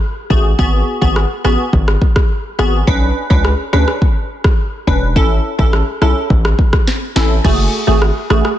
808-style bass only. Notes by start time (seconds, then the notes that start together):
0.30 A1
0.59 G#1
1.02 G#1
1.45 A1
1.73 G#1
2.59 G#1
2.87 B1
3.30 C#2
3.73 D2
4.88 E1
5.16 A1
5.59 A1
6.02 B1
6.30 A1
7.16 A1
7.45 F#1
7.88 G#1
8.30 A1